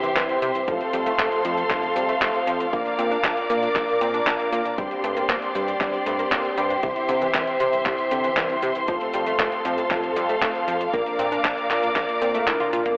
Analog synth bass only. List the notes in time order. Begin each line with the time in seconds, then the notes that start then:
0.17 C2
0.42 C3
0.68 F1
0.93 F2
1.19 F1
1.45 F2
1.70 F1
1.96 F2
2.22 F1
2.47 F2
2.73 A#1
2.99 A#2
3.24 A#1
3.50 A#2
3.76 A#1
4.01 A#2
4.27 A#1
4.52 A#2
4.78 G1
5.04 G2
5.30 G1
5.55 G2
5.81 G1
6.06 G2
6.32 G1
6.58 G2
6.83 C2
7.09 C3
7.35 C2
7.60 C3
7.86 C2
8.12 C3
8.37 C2
8.63 C3
8.88 F1
9.14 F2
9.40 F1
9.65 F2
9.91 F1
10.17 F2
10.42 F1
10.68 F2
10.93 A#1
11.19 A#2
11.45 A#1
11.70 A#2
11.96 A#1
12.22 A#2
12.47 A#1
12.73 A#2